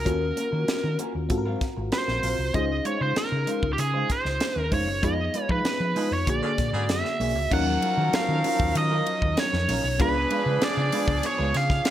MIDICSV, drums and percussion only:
0, 0, Header, 1, 2, 480
1, 0, Start_track
1, 0, Key_signature, -6, "minor"
1, 0, Tempo, 620476
1, 48, Time_signature, 4, 2, 24, 8
1, 9209, End_track
2, 0, Start_track
2, 0, Title_t, "Drums"
2, 47, Note_on_c, 9, 36, 91
2, 49, Note_on_c, 9, 42, 76
2, 124, Note_off_c, 9, 36, 0
2, 126, Note_off_c, 9, 42, 0
2, 286, Note_on_c, 9, 42, 67
2, 364, Note_off_c, 9, 42, 0
2, 528, Note_on_c, 9, 42, 81
2, 530, Note_on_c, 9, 38, 124
2, 605, Note_off_c, 9, 42, 0
2, 607, Note_off_c, 9, 38, 0
2, 766, Note_on_c, 9, 42, 65
2, 843, Note_off_c, 9, 42, 0
2, 1004, Note_on_c, 9, 42, 90
2, 1007, Note_on_c, 9, 36, 92
2, 1082, Note_off_c, 9, 42, 0
2, 1084, Note_off_c, 9, 36, 0
2, 1247, Note_on_c, 9, 42, 70
2, 1248, Note_on_c, 9, 36, 84
2, 1250, Note_on_c, 9, 38, 31
2, 1325, Note_off_c, 9, 36, 0
2, 1325, Note_off_c, 9, 42, 0
2, 1328, Note_off_c, 9, 38, 0
2, 1485, Note_on_c, 9, 42, 73
2, 1489, Note_on_c, 9, 38, 103
2, 1562, Note_off_c, 9, 42, 0
2, 1566, Note_off_c, 9, 38, 0
2, 1610, Note_on_c, 9, 38, 34
2, 1687, Note_off_c, 9, 38, 0
2, 1726, Note_on_c, 9, 46, 67
2, 1803, Note_off_c, 9, 46, 0
2, 1967, Note_on_c, 9, 42, 81
2, 1968, Note_on_c, 9, 36, 95
2, 2045, Note_off_c, 9, 36, 0
2, 2045, Note_off_c, 9, 42, 0
2, 2206, Note_on_c, 9, 42, 72
2, 2284, Note_off_c, 9, 42, 0
2, 2447, Note_on_c, 9, 42, 74
2, 2449, Note_on_c, 9, 38, 117
2, 2524, Note_off_c, 9, 42, 0
2, 2527, Note_off_c, 9, 38, 0
2, 2687, Note_on_c, 9, 42, 70
2, 2764, Note_off_c, 9, 42, 0
2, 2806, Note_on_c, 9, 36, 91
2, 2884, Note_off_c, 9, 36, 0
2, 2926, Note_on_c, 9, 42, 90
2, 3003, Note_off_c, 9, 42, 0
2, 3169, Note_on_c, 9, 42, 66
2, 3170, Note_on_c, 9, 36, 83
2, 3172, Note_on_c, 9, 38, 33
2, 3247, Note_off_c, 9, 36, 0
2, 3247, Note_off_c, 9, 42, 0
2, 3250, Note_off_c, 9, 38, 0
2, 3291, Note_on_c, 9, 38, 31
2, 3368, Note_off_c, 9, 38, 0
2, 3407, Note_on_c, 9, 42, 86
2, 3411, Note_on_c, 9, 38, 100
2, 3485, Note_off_c, 9, 42, 0
2, 3489, Note_off_c, 9, 38, 0
2, 3649, Note_on_c, 9, 46, 67
2, 3650, Note_on_c, 9, 36, 82
2, 3727, Note_off_c, 9, 46, 0
2, 3728, Note_off_c, 9, 36, 0
2, 3891, Note_on_c, 9, 36, 90
2, 3893, Note_on_c, 9, 42, 77
2, 3969, Note_off_c, 9, 36, 0
2, 3970, Note_off_c, 9, 42, 0
2, 4130, Note_on_c, 9, 42, 74
2, 4208, Note_off_c, 9, 42, 0
2, 4250, Note_on_c, 9, 36, 81
2, 4327, Note_off_c, 9, 36, 0
2, 4371, Note_on_c, 9, 42, 78
2, 4373, Note_on_c, 9, 38, 119
2, 4448, Note_off_c, 9, 42, 0
2, 4450, Note_off_c, 9, 38, 0
2, 4611, Note_on_c, 9, 46, 73
2, 4688, Note_off_c, 9, 46, 0
2, 4852, Note_on_c, 9, 42, 89
2, 4853, Note_on_c, 9, 36, 92
2, 4930, Note_off_c, 9, 36, 0
2, 4930, Note_off_c, 9, 42, 0
2, 5092, Note_on_c, 9, 42, 69
2, 5093, Note_on_c, 9, 36, 90
2, 5095, Note_on_c, 9, 38, 34
2, 5169, Note_off_c, 9, 42, 0
2, 5171, Note_off_c, 9, 36, 0
2, 5172, Note_off_c, 9, 38, 0
2, 5330, Note_on_c, 9, 42, 86
2, 5334, Note_on_c, 9, 38, 100
2, 5408, Note_off_c, 9, 42, 0
2, 5412, Note_off_c, 9, 38, 0
2, 5454, Note_on_c, 9, 38, 32
2, 5532, Note_off_c, 9, 38, 0
2, 5573, Note_on_c, 9, 46, 71
2, 5650, Note_off_c, 9, 46, 0
2, 5813, Note_on_c, 9, 36, 108
2, 5814, Note_on_c, 9, 49, 97
2, 5891, Note_off_c, 9, 36, 0
2, 5891, Note_off_c, 9, 49, 0
2, 6052, Note_on_c, 9, 51, 61
2, 6130, Note_off_c, 9, 51, 0
2, 6292, Note_on_c, 9, 51, 68
2, 6295, Note_on_c, 9, 38, 127
2, 6370, Note_off_c, 9, 51, 0
2, 6372, Note_off_c, 9, 38, 0
2, 6531, Note_on_c, 9, 46, 76
2, 6531, Note_on_c, 9, 51, 64
2, 6608, Note_off_c, 9, 46, 0
2, 6608, Note_off_c, 9, 51, 0
2, 6651, Note_on_c, 9, 36, 102
2, 6728, Note_off_c, 9, 36, 0
2, 6771, Note_on_c, 9, 51, 81
2, 6773, Note_on_c, 9, 44, 68
2, 6849, Note_off_c, 9, 51, 0
2, 6851, Note_off_c, 9, 44, 0
2, 7013, Note_on_c, 9, 51, 56
2, 7090, Note_off_c, 9, 51, 0
2, 7133, Note_on_c, 9, 36, 87
2, 7210, Note_off_c, 9, 36, 0
2, 7249, Note_on_c, 9, 51, 66
2, 7253, Note_on_c, 9, 38, 105
2, 7327, Note_off_c, 9, 51, 0
2, 7331, Note_off_c, 9, 38, 0
2, 7375, Note_on_c, 9, 38, 39
2, 7452, Note_off_c, 9, 38, 0
2, 7494, Note_on_c, 9, 46, 82
2, 7494, Note_on_c, 9, 51, 59
2, 7572, Note_off_c, 9, 46, 0
2, 7572, Note_off_c, 9, 51, 0
2, 7733, Note_on_c, 9, 36, 94
2, 7733, Note_on_c, 9, 44, 66
2, 7733, Note_on_c, 9, 51, 71
2, 7810, Note_off_c, 9, 36, 0
2, 7810, Note_off_c, 9, 44, 0
2, 7811, Note_off_c, 9, 51, 0
2, 7972, Note_on_c, 9, 51, 56
2, 8050, Note_off_c, 9, 51, 0
2, 8212, Note_on_c, 9, 51, 69
2, 8215, Note_on_c, 9, 38, 124
2, 8290, Note_off_c, 9, 51, 0
2, 8292, Note_off_c, 9, 38, 0
2, 8451, Note_on_c, 9, 46, 69
2, 8451, Note_on_c, 9, 51, 62
2, 8528, Note_off_c, 9, 46, 0
2, 8528, Note_off_c, 9, 51, 0
2, 8569, Note_on_c, 9, 36, 95
2, 8646, Note_off_c, 9, 36, 0
2, 8689, Note_on_c, 9, 51, 88
2, 8692, Note_on_c, 9, 44, 70
2, 8767, Note_off_c, 9, 51, 0
2, 8769, Note_off_c, 9, 44, 0
2, 8930, Note_on_c, 9, 51, 64
2, 8933, Note_on_c, 9, 38, 34
2, 9008, Note_off_c, 9, 51, 0
2, 9011, Note_off_c, 9, 38, 0
2, 9050, Note_on_c, 9, 36, 90
2, 9051, Note_on_c, 9, 38, 35
2, 9128, Note_off_c, 9, 36, 0
2, 9128, Note_off_c, 9, 38, 0
2, 9167, Note_on_c, 9, 51, 76
2, 9171, Note_on_c, 9, 38, 106
2, 9209, Note_off_c, 9, 38, 0
2, 9209, Note_off_c, 9, 51, 0
2, 9209, End_track
0, 0, End_of_file